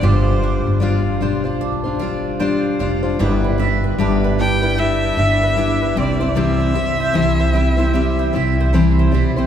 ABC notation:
X:1
M:4/4
L:1/16
Q:"Swing 16ths" 1/4=76
K:Gmix
V:1 name="Violin"
c4 z12 | z6 g2 e6 d2 | e12 z4 |]
V:2 name="Mandolin"
G,2 D2 f2 c2 D2 f2 c2 f2 | G, B e B D B D B G, B e B D B G, c | G, c e c E c E c G, c e c E c E c |]
V:3 name="Steel-string acoustic guitar"
[G,DFc]4 [G,DFc]2 [G,DFc] [DFc]2 [DFc] [G,DFc]2 [G,DFc]2 [G,DFc] [DFc] | [G,DEB]2 [G,DEB]2 [G,DEB]2 [G,DEB] [DEB] [G,DEB]2 [G,DEB]2 [G,DEB]2 [G,CEc] [G,CEc] | [C,E,G,CEc]2 [G,CEc]2 [C,E,G,CEc]2 [G,CEc] [G,CEc] [G,CEc]2 [G,CEc]2 [C,E,G,CEc]2 [G,CEc] [G,CEc] |]
V:4 name="Upright bass" clef=bass
G,,,3 G,,,2 z B,,,8 F,,,2 | G,,,4 G,,,6 G,,,4 C,,2- | C,,2 z2 C,,6 C,,4 B,,,2 |]